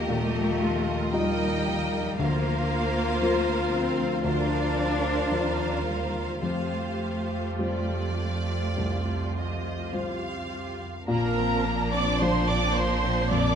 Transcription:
0.00 2.16 D#2 medium
0.00 0.35 F3 soft
0.00 1.13 G3 soft
0.00 0.61 D#4 soft
0.00 1.13 F4 soft
0.00 2.02 F4 medium
0.00 0.86 G4 soft
0.00 2.02 G4 medium
0.00 1.14 A#4 medium
0.00 1.11 D#5 soft
0.00 1.14 D#5 soft
0.09 1.11 A#2 medium
0.09 2.24 D#3 medium
0.09 1.14 A3 medium
0.09 0.61 G4 medium
0.36 1.66 F3 soft
0.61 1.40 D#4 soft
0.61 1.14 F4 medium
0.88 2.24 G4 soft
1.13 2.15 G3 soft
1.13 2.20 G3 medium
1.13 2.20 D#4 medium
1.13 2.15 F4 soft
1.13 2.95 F4 soft
1.13 2.18 A#4 medium
1.13 2.17 D#5 medium
1.13 2.16 D#5 soft
1.13 2.19 G5 medium
1.41 1.92 D#4 soft
1.67 2.44 F3 soft
1.93 2.24 D#4 soft
2.19 3.19 D2 medium
2.19 5.29 D2 medium
2.19 4.24 D3 medium
2.19 3.73 A#3 medium
2.19 6.39 F4 medium
2.19 4.21 F4 medium
2.19 4.21 A#4 medium
2.19 4.21 C5 medium
2.19 6.41 C5 medium
2.19 4.21 F5 medium
2.45 3.46 F3 soft
2.71 3.20 C4 soft
2.96 5.03 F4 soft
3.22 4.21 F3 soft
3.22 3.73 C4 soft
3.22 4.21 F4 soft
3.22 4.22 C5 soft
3.47 3.99 F3 soft
3.73 4.25 C4 medium
3.73 4.51 C4 soft
4.00 4.77 F3 soft
4.24 5.28 D2 soft
4.24 6.48 D3 soft
4.24 5.86 D4 medium
4.24 6.40 F4 medium
4.24 6.39 A#4 medium
4.24 6.39 C5 medium
4.24 6.39 F5 medium
4.52 5.30 C4 soft
4.78 5.58 F3 soft
5.05 7.30 F4 soft
5.31 6.41 D#2 soft
5.31 6.39 F3 soft
5.31 5.86 C4 soft
5.31 6.39 F4 soft
5.31 6.40 C5 soft
5.59 6.14 F3 soft
5.86 6.42 G3 medium
5.86 7.00 C4 soft
6.15 6.43 F3 soft
6.42 7.57 F2 soft
6.42 10.88 F2 soft
6.42 8.77 F3 soft
6.42 9.93 A3 soft
6.42 10.83 F4 soft
6.42 10.84 G4 soft
6.42 10.71 G4 soft
6.42 7.47 C5 soft
6.42 7.47 F5 soft
6.73 8.19 G3 soft
7.01 7.88 C4 soft
7.31 9.64 F4 soft
7.59 8.73 G3 soft
7.59 8.73 F4 soft
7.59 9.93 G4 soft
7.59 8.74 C5 soft
7.59 9.32 D5 medium
7.90 8.48 C4 soft
8.20 9.07 G3 soft
8.49 9.36 C4 soft
8.77 9.90 C2 soft
8.77 11.37 F3 soft
9.08 10.51 G3 soft
9.36 10.22 C4 soft
9.36 9.94 D#5 soft
9.66 12.20 F4 soft
9.93 11.05 G3 soft
9.93 11.05 F4 soft
9.93 11.14 G4 soft
9.93 11.05 C5 soft
9.93 11.09 F5 soft
10.23 10.81 C4 soft
10.52 11.14 G3 soft
10.82 11.65 C4 soft
11.08 13.55 A#1 medium
11.08 12.17 A#2 medium
11.08 13.55 A#2 medium
11.08 13.31 A#2 medium
11.08 11.35 A#3 medium
11.08 13.55 D4 medium
11.08 11.89 A#4 medium
11.08 11.90 A#5 medium
11.38 12.76 F3 soft
11.38 11.66 C4 medium
11.66 11.94 A#3 medium
11.66 12.47 C4 medium
11.92 12.21 C4 medium
11.92 13.55 D4 medium
11.92 12.21 D5 medium
11.92 12.21 D6 medium
12.19 13.27 F3 soft
12.19 12.50 A#3 medium
12.19 13.27 D4 soft
12.19 13.55 F4 medium
12.19 12.48 C5 medium
12.19 13.28 C5 soft
12.19 12.48 C6 medium
12.48 13.04 C4 medium
12.48 12.77 C4 medium
12.48 12.76 D5 medium
12.48 12.76 D6 medium
12.76 13.55 F3 soft
12.76 13.04 A#3 medium
12.76 13.31 C5 medium
12.76 13.31 C6 medium
13.03 13.31 C4 medium
13.03 13.55 C4 soft
13.31 13.55 F2 medium
13.31 13.55 A#2 medium
13.31 13.55 A#3 medium
13.31 13.55 D5 medium
13.31 13.55 D6 loud

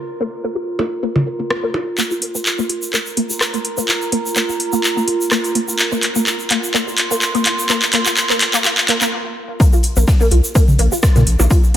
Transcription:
0.00 1.97 F4 medium
0.00 1.98 A#4 medium
0.00 1.98 A#5 medium
0.21 0.23 A#3 loud
0.44 0.46 A#3 loud
0.55 0.59 F4 medium
0.79 0.81 A#3 loud
0.79 percussion blips medium
1.03 1.05 A#3 loud
1.16 1.19 F4 medium
1.16 mid tom medium
1.16 percussion blips soft
1.27 1.33 A#4 medium
1.40 1.43 A#3 medium
1.50 cross-stick loud
1.63 1.67 A#3 loud
1.74 percussion blips medium
1.98 2.00 A#3 loud
1.98 9.12 F4 medium
1.98 clap soft
1.98 shaker medium
2.11 2.14 F4 medium
2.11 shaker soft
2.20 9.12 A#4 medium
2.20 open hi-hat medium
2.35 2.37 A#3 loud
2.35 shaker medium
2.46 clap soft
2.46 shaker medium
2.59 2.61 A#3 loud
2.59 shaker soft
2.69 2.73 F4 medium
2.69 open hi-hat medium
2.81 6.80 A#5 medium
2.81 shaker medium
2.93 2.96 A#3 loud
2.93 clap medium
2.93 shaker medium
3.06 shaker soft
3.17 3.19 A#3 loud
3.17 open hi-hat medium
3.30 3.33 F4 medium
3.30 shaker medium
3.41 cross-stick loud
3.41 clap medium
3.41 shaker medium
3.54 3.56 A#3 loud
3.54 open hi-hat soft
3.54 shaker soft
3.65 open hi-hat medium
3.77 3.80 A#3 loud
3.77 shaker medium
3.88 3.93 F4 medium
3.88 clap medium
3.88 shaker medium
4.02 shaker soft
4.12 4.15 A#3 loud
4.12 open hi-hat medium
4.26 shaker medium
4.36 4.39 A#3 loud
4.36 clap medium
4.36 shaker medium
4.49 4.52 F4 medium
4.49 shaker soft
4.60 open hi-hat medium
4.73 4.75 A#3 loud
4.73 shaker medium
4.84 clap medium
4.84 shaker medium
4.97 4.99 A#3 loud
4.97 shaker soft
5.07 5.12 F4 medium
5.07 open hi-hat medium
5.21 shaker medium
5.31 5.34 A#3 loud
5.31 cross-stick loud
5.31 clap medium
5.31 shaker medium
5.44 open hi-hat soft
5.44 shaker soft
5.55 5.58 A#3 loud
5.55 open hi-hat loud
5.68 5.71 F4 medium
5.68 shaker medium
5.79 clap medium
5.79 shaker medium
5.92 5.94 A#3 loud
5.92 shaker soft
6.03 clap medium
6.03 open hi-hat medium
6.15 6.18 A#3 loud
6.15 shaker medium
6.27 6.31 F4 medium
6.27 clap medium
6.27 shaker medium
6.39 shaker soft
6.50 6.53 A#3 loud
6.50 clap medium
6.50 open hi-hat loud
6.64 9.12 C6 medium
6.64 shaker medium
6.74 6.77 A#3 loud
6.74 clap medium
6.74 shaker medium
6.87 6.91 F4 medium
6.87 shaker soft
6.98 clap medium
6.98 open hi-hat medium
7.11 7.13 A#3 loud
7.11 shaker medium
7.21 clap medium
7.21 shaker medium
7.35 7.37 A#3 loud
7.35 open hi-hat soft
7.35 shaker soft
7.46 7.50 F4 medium
7.46 clap medium
7.46 open hi-hat loud
7.59 shaker medium
7.69 7.72 A#3 loud
7.69 clap medium
7.69 shaker medium
7.82 clap medium
7.82 shaker soft
7.93 7.96 A#3 loud
7.93 clap loud
7.93 open hi-hat loud
8.06 8.10 F4 medium
8.06 clap medium
8.06 shaker medium
8.17 clap loud
8.17 shaker medium
8.30 8.32 A#3 loud
8.30 clap medium
8.30 shaker soft
8.41 clap loud
8.41 open hi-hat loud
8.54 8.56 A#3 loud
8.54 clap medium
8.54 shaker medium
8.64 8.69 F4 medium
8.64 clap loud
8.64 shaker medium
8.78 clap medium
8.78 shaker soft
8.88 8.93 A#3 loud
8.88 clap loud
8.88 open hi-hat loud
9.01 9.05 A#3 loud
9.01 clap medium
9.01 shaker medium
9.60 9.62 A#3 loud
9.60 kick loud
9.60 closed hi-hat loud
9.60 shaker medium
9.73 9.76 F4 medium
9.73 shaker soft
9.83 closed hi-hat medium
9.83 open hi-hat medium
9.96 10.04 A#1 loud
9.96 9.99 A#3 loud
9.96 shaker medium
10.07 kick loud
10.07 snare loud
10.07 open hi-hat medium
10.07 shaker medium
10.20 10.22 A#3 loud
10.20 shaker soft
10.31 10.41 C2 loud
10.31 10.35 F4 medium
10.31 closed hi-hat medium
10.31 open hi-hat medium
10.44 shaker medium
10.55 10.58 A#3 loud
10.55 kick loud
10.55 closed hi-hat medium
10.55 shaker medium
10.68 mid tom medium
10.68 shaker soft
10.79 10.88 A#1 medium
10.79 10.81 A#3 loud
10.79 closed hi-hat medium
10.79 open hi-hat medium
10.92 10.95 F4 medium
10.92 shaker medium
11.02 kick loud
11.02 cross-stick loud
11.02 snare loud
11.02 closed hi-hat medium
11.02 shaker medium
11.16 11.24 A#2 loud
11.16 11.18 A#3 loud
11.16 snare soft
11.16 open hi-hat soft
11.16 mid tom medium
11.16 shaker soft
11.27 11.36 A#1 medium
11.27 closed hi-hat medium
11.27 open hi-hat medium
11.40 11.47 A#1 medium
11.40 11.42 A#3 loud
11.40 percussion blips medium
11.40 shaker medium
11.50 11.54 F4 medium
11.50 kick loud
11.50 closed hi-hat medium
11.50 shaker medium
11.64 shaker soft

